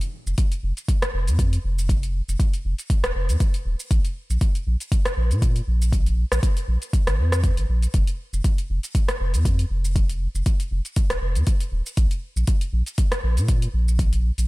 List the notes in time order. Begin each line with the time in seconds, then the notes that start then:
0.01 closed hi-hat, shaker
0.27 F1, shaker
0.38 kick, closed hi-hat, shaker
0.52 closed hi-hat, shaker
0.63 F1
0.77 closed hi-hat, shaker
0.88 kick, closed hi-hat, shaker
1.02 cross-stick, closed hi-hat, shaker
1.14 F1
1.27 F2, closed hi-hat, shaker
1.39 kick, closed hi-hat, shaker
1.53 closed hi-hat, shaker
1.64 F1
1.79 shaker
1.89 kick, closed hi-hat, shaker
2.03 closed hi-hat, shaker
2.29 F1, shaker
2.40 kick, closed hi-hat, shaker
2.53 closed hi-hat, shaker
2.65 F1
2.79 closed hi-hat, shaker
2.90 kick, closed hi-hat, shaker
3.04 D#1, cross-stick, closed hi-hat, shaker
3.15 F1
3.29 F2, closed hi-hat, shaker
3.40 kick, closed hi-hat, shaker
3.54 closed hi-hat, shaker
3.65 D#1
3.80 shaker
3.91 A#1, kick, closed hi-hat, shaker
4.05 closed hi-hat, shaker
4.30 A#1, shaker
4.41 kick, closed hi-hat, shaker
4.55 closed hi-hat, shaker
4.67 A#1
4.80 closed hi-hat, shaker
4.92 kick, closed hi-hat, shaker
5.05 cross-stick, closed hi-hat, shaker
5.17 A#1
5.31 A#2, closed hi-hat, shaker
5.42 kick, closed hi-hat, shaker
5.56 closed hi-hat, shaker
5.68 A#1
5.82 shaker
5.93 kick, closed hi-hat, shaker
6.06 closed hi-hat, shaker
6.32 A#1, cross-stick, shaker
6.43 kick, closed hi-hat, shaker
6.57 closed hi-hat, shaker
6.68 A#1
6.82 closed hi-hat, shaker
6.93 kick, closed hi-hat, shaker
7.07 G#1, cross-stick, closed hi-hat, shaker
7.18 F2
7.32 cross-stick, closed hi-hat, shaker
7.44 kick, closed hi-hat, shaker
7.57 G#1, closed hi-hat, shaker
7.69 A#1
7.82 closed hi-hat, shaker
7.94 F1, kick, closed hi-hat, shaker
8.07 closed hi-hat, shaker
8.33 F1, shaker
8.44 kick, closed hi-hat, shaker
8.58 closed hi-hat, shaker
8.70 F1
8.83 closed hi-hat, shaker
8.95 kick, closed hi-hat, shaker
9.09 cross-stick, closed hi-hat, shaker
9.20 F1
9.34 F2, closed hi-hat, shaker
9.45 kick, closed hi-hat, shaker
9.59 closed hi-hat, shaker
9.70 F1
9.85 shaker
9.96 kick, closed hi-hat, shaker
10.09 closed hi-hat, shaker
10.35 F1, shaker
10.46 kick, closed hi-hat, shaker
10.60 closed hi-hat, shaker
10.71 F1
10.85 closed hi-hat, shaker
10.96 kick, closed hi-hat, shaker
11.10 D#1, cross-stick, closed hi-hat, shaker
11.22 F1
11.35 F2, closed hi-hat, shaker
11.47 kick, closed hi-hat, shaker
11.60 closed hi-hat, shaker
11.72 D#1
11.86 shaker
11.97 A#1, kick, closed hi-hat, shaker
12.11 closed hi-hat, shaker
12.36 A#1, shaker
12.47 kick, closed hi-hat, shaker
12.61 closed hi-hat, shaker
12.73 A#1
12.86 closed hi-hat, shaker
12.98 kick, closed hi-hat, shaker
13.12 cross-stick, closed hi-hat, shaker
13.23 A#1
13.37 A#2, closed hi-hat, shaker
13.48 kick, closed hi-hat, shaker
13.62 closed hi-hat, shaker
13.74 A#1
13.88 shaker
13.99 kick, closed hi-hat, shaker
14.13 closed hi-hat, shaker
14.38 A#1, closed hi-hat, shaker